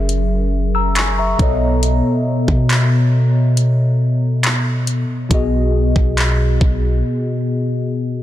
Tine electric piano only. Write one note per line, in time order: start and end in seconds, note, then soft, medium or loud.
0.00 1.34 F#3 medium
0.00 1.35 C#4 medium
0.00 1.36 G#4 medium
0.00 1.36 A#4 medium
0.00 0.50 E5 medium
0.75 0.96 A#5 medium
0.75 0.95 E6 medium
0.97 1.17 G#5 medium
0.97 1.17 C#6 medium
1.19 1.60 E5 medium
1.19 1.59 A#5 medium
1.38 4.82 B2 medium
1.38 4.83 B3 medium
1.38 4.84 A4 medium
1.38 4.84 C#5 medium
1.43 4.85 D#5 medium
5.29 8.23 B2 medium
5.29 8.23 B3 medium
5.29 8.23 F#4 medium
5.29 8.23 G#4 medium
5.34 8.23 D#5 medium